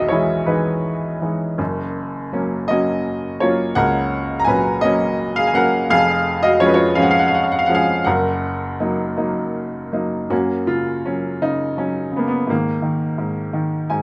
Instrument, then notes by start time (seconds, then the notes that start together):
upright piano
Already playing: B1 D#3 E3 G#3 D#4 F#4 G#4 A#4 B4 D#5 E5 F#5
0.08 E3 G#3 E4 C#5 D#5
0.46 E3 G#3 D#4 B4
1.21 E3 G#3 D#4
1.58 F#1 F#2
2.32 F#3 A#3 C#4
2.68 F#3 A#3 C#4 F#4 D#5
3.40 F#3 A#3 C#4 F4 C#5
3.75 C#2 A#4 F#5
4.39 A#5
4.45 A#2 F#3 C#4 B4 G#5
4.81 F#3 A#3 C#4 F#4 D#5
5.36 G#4 F5
5.47 G#5
5.53 F#3 A#3 C#4 A#4 F#5
5.90 F1 F2 G#4 F5
6.43 F#4 D#5
6.60 F3 G#3 C#4 F4 C#5
6.67 B4
6.74 F4 C#5
6.95 F3 G#3 C#4 F5
7.02 F#5
7.11 F5
7.19 F#5
7.28 F5
7.35 F#5
7.44 F5
7.52 F#5
7.59 F5
7.66 F3 G#3 F#5
7.70 C#4
7.75 G#4 F5
8.05 F#1 F#2 A#4 F#5
8.80 F#3 A#3 D#4
9.17 F#3 A#3 D#4
9.92 F#3 A#3 D#4
10.30 F#2 A#3 C#4 F#4
10.67 C#3 F4
11.06 F#3 C#4
11.42 C#3 D#4
11.77 F#3 C#4
12.11 C#3
12.16 A#3 B3
12.28 B3
12.47 G#2 D#3 A#3
12.82 D#3
13.18 G#2
13.53 D#3
13.90 G#2 G#5